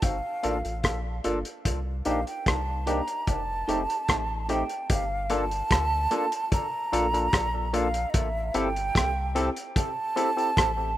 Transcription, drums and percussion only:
0.02 kick loud
0.02 closed hi-hat medium
0.43 closed hi-hat medium
0.65 closed hi-hat soft
0.84 kick medium
0.84 cross-stick medium
0.84 closed hi-hat medium
1.24 closed hi-hat medium
1.45 closed hi-hat medium
1.65 kick loud
1.65 closed hi-hat loud
2.05 closed hi-hat medium
2.27 closed hi-hat soft
2.46 kick loud
2.46 cross-stick loud
2.46 closed hi-hat medium
2.87 closed hi-hat medium
3.08 closed hi-hat soft
3.27 kick loud
3.27 closed hi-hat medium
3.69 closed hi-hat medium
3.90 closed hi-hat soft
4.08 kick loud
4.08 cross-stick loud
4.08 closed hi-hat medium
4.49 closed hi-hat medium
4.69 closed hi-hat medium
4.90 kick loud
4.90 closed hi-hat loud
5.30 closed hi-hat medium
5.51 closed hi-hat soft
5.71 kick loud
5.71 cross-stick loud
5.71 closed hi-hat medium
6.11 closed hi-hat medium
6.32 closed hi-hat medium
6.52 kick loud
6.52 closed hi-hat medium
6.93 closed hi-hat medium
7.14 closed hi-hat medium
7.33 kick loud
7.33 cross-stick loud
7.33 closed hi-hat medium
7.74 closed hi-hat medium
7.94 closed hi-hat medium
8.14 kick loud
8.14 closed hi-hat loud
8.54 closed hi-hat medium
8.76 closed hi-hat soft
8.95 kick loud
8.95 cross-stick loud
8.95 closed hi-hat medium
9.36 closed hi-hat medium
9.56 closed hi-hat medium
9.76 kick loud
9.76 closed hi-hat medium
10.17 closed hi-hat medium
10.38 closed hi-hat medium
10.57 kick loud
10.57 cross-stick loud
10.57 closed hi-hat medium

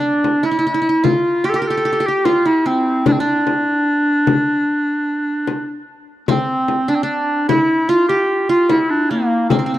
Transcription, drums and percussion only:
0.24 frame drum medium
1.05 frame drum medium
2.25 frame drum medium
3.06 frame drum medium
3.47 frame drum medium
4.27 frame drum medium
5.47 frame drum medium
6.28 frame drum medium
6.68 frame drum medium
7.49 frame drum medium
8.70 frame drum medium
9.50 frame drum medium

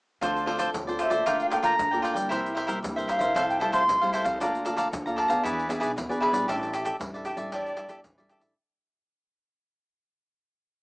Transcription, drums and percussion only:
0.22 pandeiro medium
0.22 shaker medium
0.22 surdo medium
0.36 pandeiro soft
0.36 shaker soft
0.47 pandeiro medium
0.59 pandeiro medium
0.59 shaker medium
0.59 surdo soft
0.74 pandeiro medium
0.74 shaker medium
0.74 surdo loud
0.88 pandeiro soft
0.88 shaker soft
0.99 pandeiro medium
0.99 shaker medium
0.99 surdo soft
1.11 pandeiro medium
1.11 shaker medium
1.26 pandeiro medium
1.26 shaker medium
1.26 surdo medium
1.40 pandeiro soft
1.40 shaker soft
1.52 pandeiro medium
1.52 shaker medium
1.63 pandeiro medium
1.63 shaker medium
1.63 surdo soft
1.79 pandeiro medium
1.79 shaker medium
1.79 surdo loud
1.93 pandeiro soft
1.93 shaker soft
2.05 pandeiro medium
2.05 shaker medium
2.05 surdo soft
2.16 pandeiro medium
2.16 shaker medium
2.16 surdo soft
2.32 pandeiro medium
2.32 shaker medium
2.32 surdo medium
2.46 pandeiro soft
2.46 shaker soft
2.57 pandeiro medium
2.69 pandeiro medium
2.69 shaker medium
2.69 surdo soft
2.84 pandeiro medium
2.84 shaker medium
2.84 surdo loud
2.98 pandeiro soft
2.98 shaker soft
3.09 pandeiro medium
3.09 shaker medium
3.09 surdo soft
3.21 pandeiro medium
3.21 shaker medium
3.36 pandeiro medium
3.36 shaker medium
3.36 surdo medium
3.50 pandeiro soft
3.50 shaker soft
3.61 pandeiro medium
3.74 pandeiro medium
3.74 shaker medium
3.74 surdo soft
3.89 pandeiro medium
3.89 shaker medium
3.89 surdo medium
4.03 pandeiro soft
4.03 shaker soft
4.14 pandeiro medium
4.14 shaker medium
4.14 surdo soft
4.25 pandeiro medium
4.25 shaker medium
4.25 surdo soft
4.41 pandeiro medium
4.41 shaker medium
4.41 surdo medium
4.55 pandeiro soft
4.55 shaker soft
4.66 pandeiro medium
4.66 shaker medium
4.78 pandeiro medium
4.78 shaker medium
4.78 surdo soft
4.93 pandeiro medium
4.93 shaker medium
4.93 surdo loud
5.07 pandeiro soft
5.07 shaker soft
5.18 pandeiro medium
5.18 surdo soft
5.30 pandeiro medium
5.30 shaker medium
5.45 pandeiro medium
5.45 shaker medium
5.45 surdo medium
5.59 pandeiro soft
5.59 shaker soft
5.70 pandeiro medium
5.70 shaker medium
5.82 pandeiro soft
5.82 shaker medium
5.82 surdo soft
5.98 pandeiro medium
5.98 shaker medium
5.98 surdo medium
6.11 pandeiro soft
6.11 shaker soft
6.22 pandeiro medium
6.34 pandeiro medium
6.34 shaker medium
6.34 surdo soft
6.49 pandeiro medium
6.49 shaker medium
6.49 surdo medium
6.63 pandeiro soft
6.63 shaker soft
6.74 pandeiro medium
6.74 shaker medium
6.85 pandeiro medium
6.85 shaker medium
6.85 surdo soft
7.01 pandeiro medium
7.01 shaker medium
7.01 surdo loud
7.14 pandeiro soft
7.14 shaker soft
7.25 pandeiro medium
7.25 shaker medium
7.25 surdo soft
7.37 pandeiro medium
7.37 shaker medium
7.52 pandeiro medium
7.52 shaker medium
7.52 surdo medium
7.66 pandeiro soft
7.66 shaker soft
7.77 pandeiro medium
7.77 shaker medium
7.89 pandeiro medium
7.89 shaker medium
7.89 surdo soft
8.04 pandeiro medium
8.04 shaker medium
8.04 surdo medium
8.18 pandeiro soft
8.18 shaker soft
8.30 pandeiro medium
8.30 shaker medium
8.30 surdo soft
8.41 pandeiro medium
8.41 shaker medium
8.41 surdo soft

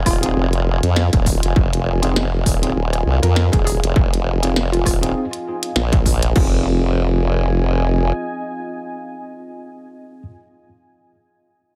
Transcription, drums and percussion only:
0.06 kick medium
0.06 cross-stick medium
0.06 open hi-hat medium
0.23 closed hi-hat medium
0.53 closed hi-hat soft
0.83 closed hi-hat medium
0.96 snare loud
1.13 kick loud
1.13 closed hi-hat soft
1.26 kick medium
1.26 open hi-hat medium
1.43 closed hi-hat medium
1.56 kick loud
1.73 closed hi-hat medium
2.03 closed hi-hat medium
2.16 snare loud
2.46 kick medium
2.46 open hi-hat medium
2.63 closed hi-hat medium
2.93 cross-stick soft
2.93 closed hi-hat soft
3.23 closed hi-hat medium
3.36 snare loud
3.53 kick loud
3.53 closed hi-hat medium
3.67 cross-stick soft
3.67 open hi-hat medium
3.84 closed hi-hat medium
3.96 kick loud
4.14 closed hi-hat medium
4.43 closed hi-hat medium
4.56 snare loud
4.74 closed hi-hat soft
4.86 kick medium
4.86 cross-stick medium
4.86 open hi-hat medium
5.03 closed hi-hat medium
5.33 closed hi-hat soft
5.63 closed hi-hat medium
5.76 snare loud
5.93 kick loud
5.93 closed hi-hat medium
6.06 kick medium
6.06 open hi-hat medium
6.23 closed hi-hat medium
6.36 kick loud
6.36 crash medium

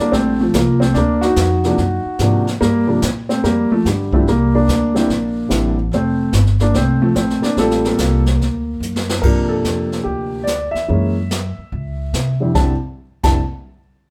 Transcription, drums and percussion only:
0.13 brush sweep medium
0.13 kick soft
0.13 snare soft
0.54 kick soft
0.54 snare medium
0.54 hi-hat pedal medium
0.82 snare soft
0.94 brush sweep soft
0.94 kick soft
0.94 snare soft
1.22 snare soft
1.36 kick soft
1.36 snare medium
1.36 hi-hat pedal medium
1.64 snare soft
1.78 brush sweep soft
1.78 kick soft
1.78 snare soft
2.19 kick soft
2.19 snare medium
2.19 hi-hat pedal soft
2.47 snare soft
2.61 brush sweep medium
2.61 kick soft
2.61 snare soft
3.02 kick soft
3.02 snare medium
3.02 hi-hat pedal medium
3.30 snare soft
3.44 brush sweep soft
3.44 kick soft
3.44 snare soft
3.85 kick soft
3.85 snare medium
3.85 hi-hat pedal medium
4.13 kick medium
4.27 brush sweep soft
4.27 kick soft
4.27 snare soft
4.68 kick soft
4.68 snare medium
4.68 hi-hat pedal medium
4.96 snare medium
5.09 brush sweep soft
5.09 kick soft
5.09 snare soft
5.50 kick soft
5.50 snare medium
5.50 hi-hat pedal medium
5.92 brush sweep soft
5.92 kick soft
5.92 snare soft
6.33 kick soft
6.33 snare medium
6.33 hi-hat pedal medium
6.46 snare soft
6.60 snare soft
6.74 brush sweep soft
6.74 kick soft
6.74 snare soft
7.15 kick soft
7.15 snare medium
7.15 hi-hat pedal medium
7.30 snare soft
7.43 snare soft
7.57 brush sweep soft
7.57 kick soft
7.57 snare soft
7.71 snare soft
7.84 snare soft
7.98 kick soft
7.98 snare medium
7.98 hi-hat pedal medium
8.26 snare soft
8.40 brush sweep soft
8.40 kick soft
8.40 snare soft
8.83 hi-hat pedal medium
8.96 snare medium
9.09 snare medium
9.23 brush sweep soft
9.23 kick medium
9.23 crash medium
9.64 snare medium
9.64 hi-hat pedal soft
9.92 snare soft
10.06 brush sweep soft
10.06 kick soft
10.47 snare medium
10.47 hi-hat pedal medium
10.75 snare soft
10.89 brush sweep soft
10.89 kick soft
11.31 snare medium
11.31 hi-hat pedal medium
11.72 brush sweep soft
11.72 kick soft
12.14 snare medium
12.14 hi-hat pedal medium
12.55 kick medium
12.55 snare medium
13.23 kick medium
13.23 snare medium
13.23 crash medium

